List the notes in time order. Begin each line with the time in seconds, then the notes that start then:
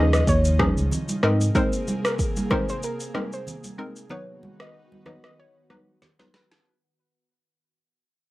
Already playing: D#2 C#3 F3 C#4 D#4 G#4 D#5
0.13 D#5, cross-stick, shaker
0.27 D#2 C#5, kick, shaker
0.45 shaker
0.59 F3 C#4 D#4 G#4, kick, cross-stick, high conga
0.77 C#2, shaker
0.91 low conga, shaker
1.09 high conga, shaker
1.23 G#2 C3 G#3 A#3 C4 D#4 G#4 A#4 D#5, cross-stick
1.41 shaker
1.55 G#3 C4 D#4 A#4 C5, kick, shaker
1.73 shaker
1.88 high conga, shaker
2.05 A#4, cross-stick, shaker
2.19 kick, shaker
2.36 high conga, shaker
2.50 G#3 C4 D#4 A#4 C5, kick, cross-stick, low conga
2.69 C5, shaker
2.83 A#4, shaker
3.00 shaker
3.14 G#3 C4 D#4 A#4, cross-stick, high conga
3.33 C5, shaker
3.47 low conga, shaker
3.64 high conga, shaker
3.78 G#3 C4 D#4 A#4
3.96 shaker
4.10 D#3 F#3 B3 D#4 F#4 B4 C#5, low conga
4.43 high conga
4.60 D#5, cross-stick
4.92 high conga
5.06 F#3 B3 D#4 B4 D#5, cross-stick, high conga, low conga
5.24 D#5, cross-stick
5.40 C#5
5.70 F#3 B3 D#4 B4, cross-stick, high conga
6.02 snare, low conga
6.19 F#3 B3 D#4 B4, snare, high conga
6.34 B4, snare
6.51 snare